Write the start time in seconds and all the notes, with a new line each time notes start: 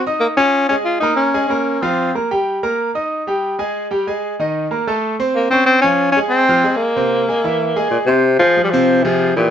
0.07 D#4 D#5 D#6
0.20 A#3
0.37 C#4 F4 F5 F6
0.69 G#3 C#4 G#4 G#5
0.85 F4
1.00 A#3 D#4 A#4 A#5
1.17 C#4
1.34 G#3 G#4 G#5
1.48 A#3 C#4 A#4 A#5
1.82 F3 C4 F4 F5
2.15 A#3 A#4 A#5
2.31 G3 G4 G5
2.63 A#3 A#4 A#5
2.95 D#4 D#5 D#6
3.27 G3 G4 G5
3.59 G#3 G#4 G#5
3.91 G3 G4 G5
4.07 G#3 G#4 G#5
4.39 D#3 D#4 D#5
4.71 A#3 A#4 A#5
4.87 A3 A4 A5
5.20 C4 C5 C6
5.35 A#3
5.51 C4 C#4 C#5 C#6
5.66 C4
5.81 F3 C#4 F4 F5
6.12 C#4
6.16 G#3 G#4 G#5
6.29 C4
6.49 F3 F4 F5
6.64 G#3 G#4 G#5
6.76 A#3
6.96 C3 C4 C5
7.28 G#3 G#4 G#5
7.44 E3 E4 E5
7.76 G#3 G#4 G#5
7.91 A#2
8.06 C3 C4 C5 C6
8.39 F3 F4 G#4
8.57 F3 F4 G#4
8.64 G3
8.71 C3 F3 C4 C5
9.03 C3 F3 F4 G#4
9.36 A#2 E3 E4 G4